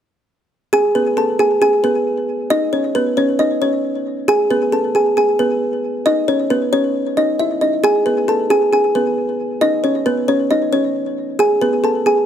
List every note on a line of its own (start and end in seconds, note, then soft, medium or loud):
0.73 0.92 G#4 loud
0.73 0.93 G#5 medium
0.95 1.15 B3 medium
0.95 1.15 B4 medium
1.17 1.37 A4 medium
1.17 1.37 A5 medium
1.39 1.59 G#4 medium
1.39 1.59 G#5 medium
1.62 1.81 G#4 medium
1.62 1.82 G#5 medium
1.84 2.47 B3 medium
1.84 2.46 B4 medium
2.50 2.71 D#4 medium
2.50 2.70 D#5 loud
2.73 2.93 C#4 medium
2.73 2.92 C#5 medium
2.95 3.15 B3 medium
2.95 3.15 B4 medium
3.17 3.37 C#4 medium
3.17 3.37 C#5 medium
3.39 3.59 D#4 medium
3.39 3.59 D#5 medium
3.62 4.25 C#4 medium
3.62 4.24 C#5 medium
4.28 4.48 G#4 loud
4.28 4.48 G#5 medium
4.50 4.71 B3 medium
4.50 4.70 B4 medium
4.72 4.92 A4 medium
4.72 4.93 A5 medium
4.95 5.15 G#4 medium
4.95 5.15 G#5 medium
5.17 5.37 G#4 medium
5.17 5.37 G#5 medium
5.39 6.02 B3 medium
5.39 6.02 B4 medium
6.06 6.26 D#4 medium
6.06 6.25 D#5 medium
6.28 6.48 C#4 medium
6.28 6.48 C#5 medium
6.50 6.70 B3 medium
6.50 6.70 B4 medium
6.73 7.15 C#4 medium
6.73 7.14 C#5 medium
7.17 7.37 D#4 medium
7.17 7.37 D#5 medium
7.39 7.59 E4 medium
7.39 7.59 E5 medium
7.61 7.81 D#4 medium
7.61 7.81 D#5 medium
7.84 8.03 G#4 loud
7.84 8.04 G#5 medium
8.06 8.26 B3 medium
8.06 8.25 B4 medium
8.28 8.48 A4 medium
8.28 8.48 A5 medium
8.50 8.70 G#4 medium
8.50 8.70 G#5 medium
8.73 8.92 G#4 medium
8.73 8.93 G#5 medium
8.95 9.58 B3 medium
8.95 9.58 B4 medium
9.61 9.81 D#4 medium
9.61 9.81 D#5 medium
9.84 10.04 C#4 medium
9.84 10.03 C#5 medium
10.06 10.26 B3 medium
10.06 10.26 B4 medium
10.28 10.48 C#4 medium
10.28 10.48 C#5 medium
10.51 10.71 D#4 medium
10.51 10.70 D#5 medium
10.73 11.36 C#4 medium
10.73 11.35 C#5 medium
11.39 11.59 G#4 loud
11.39 11.59 G#5 medium
11.62 11.82 B3 medium
11.62 11.81 B4 medium
11.84 12.03 A4 medium
11.84 12.04 A5 medium
12.06 12.26 G#4 medium
12.06 12.26 G#5 medium